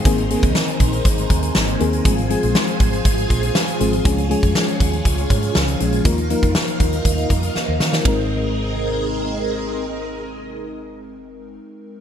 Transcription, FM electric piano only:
\new Staff \with { instrumentName = "FM electric piano" } { \time 4/4 \key aes \major \tempo 4 = 120 << { r1 | r1 | r1 | r2. f''8 bes'8~ |
bes'8 r2. r8 | r1 | } \\ { <ees bes c' aes'>8 <ees bes c' aes'>4~ <ees bes c' aes'>16 r4. r16 <ees bes c' aes'>8 | <f aes c' aes'>8 <f aes c' aes'>4~ <f aes c' aes'>16 r4. r16 <f aes c' aes'>8 | <f aes des' aes'>8 <f aes des' aes'>4~ <f aes des' aes'>16 r4. r16 <f aes des' aes'>8 | <f bes ees' bes'>8 <f bes ees' bes'>4~ <f bes ees' bes'>16 r2 r16 |
<aes c' ees' bes'>1~ | <aes c' ees' bes'>1 | } >> }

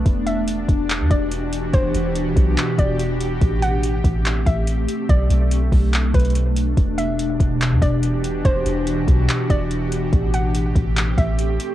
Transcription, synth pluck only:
\new Staff \with { instrumentName = "Synth pluck" } { \time 4/4 \key e \minor \tempo 4 = 143 r8 e''2 d''4. | c''2~ c''8 d''4. | r8 fis''2 e''4. | d''2~ d''8 b'4. |
r8 e''2 d''4. | c''2~ c''8 d''4. | r8 fis''2 e''4. | }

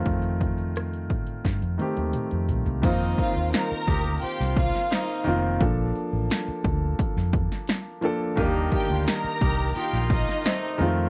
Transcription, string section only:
\new Staff \with { instrumentName = "String section" } { \time 4/4 \key f \mixolydian \tempo 4 = 87 r1 | r8 <f' f''>8 <bes' bes''>4 <g' g''>8 <f' f''>4 r8 | r1 | r8 <g' g''>8 <bes' bes''>4 <g' g''>8 <ees' ees''>4 r8 | }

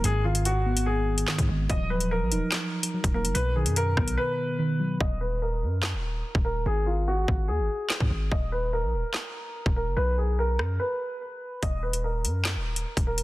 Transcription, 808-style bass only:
\new Staff \with { instrumentName = "808-style bass" } { \clef bass \time 4/4 \key ees \minor \tempo 4 = 145 aes,,2. r16 aes,16 aes,,8 | ees,,4~ ees,,16 bes,,16 ees,,16 r4. ees,,8 ges,,16 | b,,8. fis,8. b,,8 r2 | ees,,4. ges,8. ees,,8. r16 ees,,8. |
aes,,4. aes,,8 ees,16 aes,,16 r8. aes,16 aes,,8 | ees,,4~ ees,,16 bes,,16 ees,,16 r4. ees,,8 ges,,16 | b,,4. fis,8 r2 | ees,,4. ges,8. ees,,8. r16 ees,,8. | }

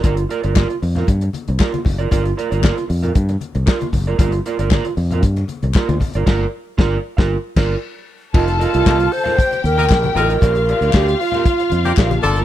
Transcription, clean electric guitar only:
\new Staff \with { instrumentName = "Clean electric guitar" } { \time 4/4 \key g \minor \tempo 4 = 116 <f' bes' d''>16 r16 <f' bes' d''>16 <f' bes' d''>16 <f' bes' d''>16 r8 <f' bes' f''>16 r4 <f' bes' d''>16 r8 <f' bes' d''>16 | <f' bes' d''>16 r16 <f' bes' d''>16 <f' bes' d''>16 <f' bes' d''>16 r8 <f' bes' f''>16 r4 <f' bes' d''>16 r8 <f' bes' d''>16 | <f' bes' d''>16 r16 <f' bes' d''>16 <f' bes' d''>16 <f' bes' d''>16 r8 <f' bes' f''>16 r4 <f' bes' d''>16 r8 <f' bes' d''>16 | <f' bes' d''>8 r8 <f' bes' d''>8 r16 <f' bes' f''>8 r16 <f' bes' d''>8 r4 |
<f' bes' ees''>16 r16 <f' bes' ees''>16 <f' bes' ees''>16 <f' bes' ees''>16 r8 <f' bes' f''>16 r4. <f' bes' ees''>16 <f' bes' ees''>16 | <g' bes' d''>16 r16 <g' bes' d''>16 <g' bes' d''>16 <g' bes' d''>16 r8 <g' bes' f''>16 r4 <g' bes' d''>16 r8 <bes f' a'>16 | }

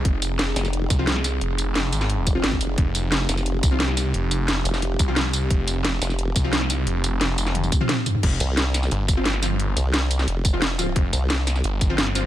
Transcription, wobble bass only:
\new Staff \with { instrumentName = "Wobble bass" } { \clef bass \time 4/4 \key f \minor \tempo 4 = 176 r4. f,,4 r4. | r2 r8 f,,8 aes,,8 f,,8 | r4. f,,4 r4. | r4. f,,4 r4. |
r4. f,,4 r4. | r1 | r8 c,4. r2 | r8 c,4. f,,2 |
r8 c,4. r2 | }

